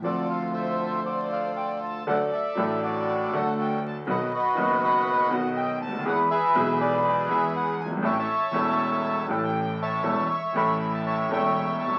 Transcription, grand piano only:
\new Staff \with { instrumentName = "Grand piano" } { \clef bass \time 4/4 \key d \minor \tempo 4 = 120 << { <d, d f c' d' a'>1 | \key d \major <d, d fis a d' a'>8 r8 <a,, a, fis a d' a'>4. <d, d fis a d' a'>4. | <b,, b, dis fis b fis'>8 r8 <fis,, fis, dis fis b fis'>4. <b,, b, dis fis b fis'>4. | <e, e gis b gis'>8 r8 <b,, b, e gis b gis'>4. <e, e gis b gis'>4. |
<a,, a, e a cis' a'>8 r8 <e,, e, e a cis' a'>4. <a,, a, e a cis' a'>4. | <e,, e, e a cis' a'>8 r8 <a,, a, e a cis' a'>4. <e,, e, e a cis' a'>4. | } \\ { r1 | r1 | r2. r8 r32 cis,32 d,32 dis,32 | r2. r8 r32 fis,,32 g,,32 gis,,32 |
r1 | r2. r8 r32 b,,32 c,32 r32 | } >> }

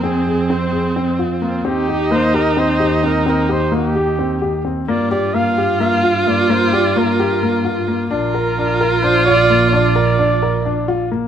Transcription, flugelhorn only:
\new Staff \with { instrumentName = "Flugelhorn" } { \time 7/8 \key c \minor \tempo 4 = 130 aes'4 c''4. r8 f'8 | g'4 c''8 bes'8 c''4 bes'8 | bes'8 c''8 g'2 r8 | d''8 d''8 f''4 f''4 d''8 |
c''8 d''8 bes'2 r8 | bes'2 c''8 d''4 | d''2. r8 | }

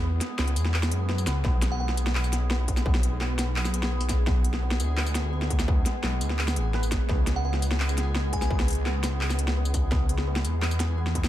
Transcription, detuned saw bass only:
\new Staff \with { instrumentName = "Detuned saw bass" } { \clef bass \time 4/4 \key b \dorian \tempo 4 = 170 e,8 r8 cis,8 e,4 fis,4 cis,8 | b,,2.~ b,,8 b,,8~ | b,,8. b,,2.~ b,,16~ | b,,4. d,2~ d,8~ |
d,8 r8 b,,8 d,4 a,,4~ a,,16 r16 | cis,2.~ cis,8 cis,8~ | cis,8. cis,2.~ cis,16~ | cis,4. e,2~ e,8 | }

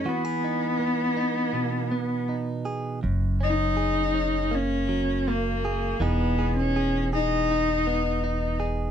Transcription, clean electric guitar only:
\new Staff \with { instrumentName = "Clean electric guitar" } { \time 4/4 \key fis \mixolydian \tempo 4 = 81 << { fis'16 gis'16 dis'4 dis'4. dis'8 gis'8 | r8 cis'8 gis'8 cis'8 ais4 ais8 gis'8 | <b dis' gis'>8 gis'8 gis'8 gis'8 dis'4 dis'8 gis'8 | } \\ { e4 b4 b,8 b4. | fis,2~ fis,8 fis4. | e2~ e8 b4. | } >> }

